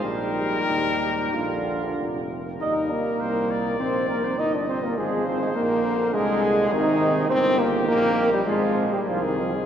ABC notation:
X:1
M:4/4
L:1/16
Q:1/4=101
K:Eb
V:1 name="Flugelhorn"
G8 F6 z2 | e2 B6 c2 B c e d c B | A2 c A B4 A4 E4 | c2 B2 B3 G A3 G F E F A |]
V:2 name="Trumpet"
B12 z4 | B4 c2 d6 e4 | c8 B2 A6 | G8 F2 z2 A4 |]
V:3 name="French horn"
E8 D6 z2 | E2 B,6 C2 B, C E D C B, | A,2 C A, B,4 A,4 E,4 | C2 B,2 B,3 G, A,3 G, F, E, F, A, |]
V:4 name="Trombone" clef=bass
G,8 D,6 z2 | G,4 G,4 E,8 | F,4 E,2 D,6 C,4 | E,4 E,4 F,2 z2 E,4 |]
V:5 name="Tuba" clef=bass
B,,,4 E,,4 B,,,4 F,,,4 | E,,4 C,,4 B,,,4 G,,,4 | A,,,4 B,,,4 C,,4 A,,,4 | G,,,4 B,,,4 A,,,2 z2 C,,4 |]